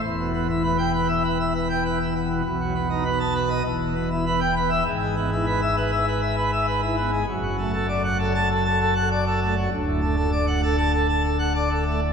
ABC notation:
X:1
M:4/4
L:1/16
Q:1/4=99
K:Ephr
V:1 name="Pipe organ"
E,, B,, B, E B g B e B e B g B E B, B,, | B,, ^F, B, ^D B a B ^d E,, B,, B, E B g B e | [K:Dlyd] G,, G, B, E B e B e B e B e B E B, G, | F,, F, A, A d f A a A a A f d A A, F, |
D,, A,, A, A d f A a A a A f d A A, A,, |]
V:2 name="Pipe organ" clef=bass
E,,,16 | B,,,8 E,,,8 | [K:Dlyd] G,,,16 | F,,,16 |
D,,,16 |]